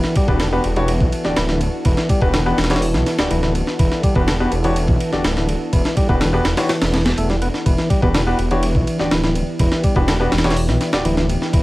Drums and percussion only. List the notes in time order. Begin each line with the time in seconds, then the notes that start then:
0.04 snare
0.16 kick, ride
0.28 kick
0.40 snare, ride
0.64 ride
0.76 ride
0.88 ride
1.01 kick
1.13 ride
1.25 snare
1.36 snare, ride
1.49 snare
1.61 ride
1.85 kick, ride
1.97 snare
2.09 kick, ride
2.22 kick
2.34 snare, ride
2.58 snare, ride
2.64 snare, ride
2.70 snare, ride
2.76 snare, ride
2.82 open hi-hat
2.94 snare
3.06 snare, ride
3.19 snare
3.31 ride
3.43 snare
3.55 ride
3.67 snare
3.79 kick, ride
3.92 snare
4.03 kick, ride
4.16 kick
4.28 snare, ride
4.52 ride
4.64 ride
4.76 ride
4.88 kick
5.00 ride
5.13 snare
5.24 snare, ride
5.37 snare
5.49 ride
5.73 kick, ride
5.85 snare
5.97 kick, ride
6.09 kick
6.21 snare, ride
6.45 snare, ride
6.57 snare, ride
6.69 snare, ride
6.82 snare, ride
6.94 snare, ride
7.06 snare, ride
7.18 ride
7.30 snare
7.42 ride
7.54 snare
7.66 kick, ride
7.78 snare
7.90 kick, ride
8.02 kick
8.15 snare, ride
8.39 ride
8.51 ride
8.63 ride
8.75 kick
8.87 ride
8.99 snare
9.11 snare, ride
9.24 snare
9.35 ride
9.59 kick, ride
9.72 snare
9.84 kick, ride
9.96 kick
10.08 snare, ride
10.32 snare, ride
10.38 snare, ride
10.44 snare, ride
10.51 snare, ride
10.57 open hi-hat
10.69 snare
10.81 snare, ride
10.93 snare
11.05 ride
11.17 snare
11.29 ride
11.42 snare
11.53 kick, ride